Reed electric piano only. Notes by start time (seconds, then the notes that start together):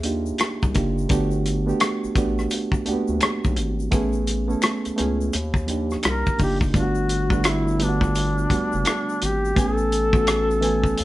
Already playing: G#4 E5
0.03 A#3 D4 D#4 F4 G4
0.74 A#3 D4 D#4 F4 G4
1.09 A3 B3 D4 F#4 G4
1.66 A3 B3 D4 F#4 G4
2.15 A3 B3 D4 F#4 G4
2.86 A3 A#3 D4 F#4 G4
2.92 B3
3.91 A3 B3 C#4 E4 G#4
4.48 A3 B3 C#4 E4 A4
4.96 A3 B3 C#4 E4 G#4
5.67 F3 A#3 D4 D#4 G4
6.38 F3 A#3 D4 D#4 F4
6.73 G3 A3 B3 D4 F4
6.83 F#4
7.30 G3 A3 B3 D4 F#4
7.79 G3 A3 B3 D4 F4
7.89 F#4
8.50 G3 A3 B3 D4 F#4
9.55 E3 A3 B3 C#4 G#5
10.13 E3 A3 B3 C#4 F#4
10.61 E3 A3 B3 C#4 G#5